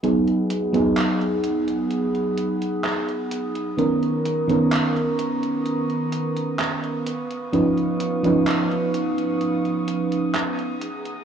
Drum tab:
HH |xxxxxxxxxxxxxxxx|xxxxxxxxxxxxxxxx|xxxxxxxxxxxxxxxx|
CP |----x-------x---|----x-------x---|----x-------x---|